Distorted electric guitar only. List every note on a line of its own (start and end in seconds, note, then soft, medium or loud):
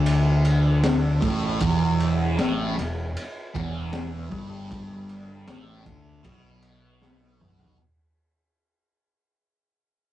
0.00 1.20 D3 loud
1.22 1.60 A2 loud
1.60 2.37 E2 loud
2.38 2.76 A2 loud
2.77 3.08 E2 medium
3.54 4.31 E2 loud
4.31 5.46 G2 loud
5.47 5.84 A2 loud
5.85 6.23 D3 loud
6.24 7.77 B2 loud